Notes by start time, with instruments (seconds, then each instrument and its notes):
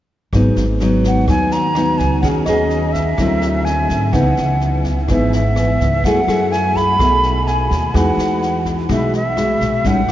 0.33 upright bass G#1, nylon-string guitar G#2 F#3 B3 D#4, kick, cross-stick, snare
0.56 upright bass G#1, snare
0.80 nylon-string guitar F#3 B3 D#4, snare
1.04 flute F#5, kick, snare
1.28 upright bass D#2, nylon-string guitar D#3 F#3 B3 D#4, flute G#5, kick, cross-stick, snare
1.51 flute A#5, snare
1.75 nylon-string guitar F#3 B3 D#4, cross-stick, snare
1.98 upright bass C#2, flute G#5, kick, snare
2.22 upright bass D#2, nylon-string guitar D#3 C#4 F#4 G#4, flute F#5, kick, snare
2.45 upright bass D#2, nylon-string guitar C#4 F#4 G#4, flute D#5, cross-stick, snare
2.70 snare
2.93 flute E5, kick, snare
3.18 upright bass D2, nylon-string guitar D3 F#3 C4 E4, kick, cross-stick, snare
3.41 snare
3.65 flute G#5, snare
3.90 upright bass G#2, kick, snare
4.13 upright bass C#2, nylon-string guitar C#3 E3 B3 D#4, flute F#5, kick, cross-stick, snare
4.37 upright bass C#2, snare
4.61 snare
4.84 kick, snare
5.08 upright bass G#1, nylon-string guitar G#2 E3 B3 D#4, flute E5, kick, cross-stick, snare
5.33 flute E5, snare
5.56 nylon-string guitar E3 B3, cross-stick, snare
5.80 upright bass C#2, kick, snare
6.04 upright bass F#2, nylon-string guitar F#3 A3 E4 G#4, flute F#5, kick, snare
6.27 upright bass F#2, nylon-string guitar A3 E4 G#4, cross-stick, snare
6.52 flute G#5, snare
6.75 flute B5, kick, snare
6.99 upright bass B1, nylon-string guitar B2 A3 D#4 G#4, kick, cross-stick, snare
7.23 snare
7.47 flute G#5, snare
7.71 upright bass D#2, kick, snare
7.94 upright bass E2, nylon-string guitar E3 G#3 D#4 F#4, flute F#5, kick, cross-stick, snare
8.17 upright bass E2, snare
8.42 snare
8.66 kick, snare
8.89 upright bass B1, nylon-string guitar B2 G#3 D#4 F#4, flute E5, kick, cross-stick, snare
9.13 flute E5, snare
9.37 nylon-string guitar G#3 F#4, cross-stick, snare
9.61 upright bass A#1, kick, snare
9.84 upright bass A1, nylon-string guitar A2 G3 C#4 D#4, flute F#5, kick, snare
10.08 cross-stick, snare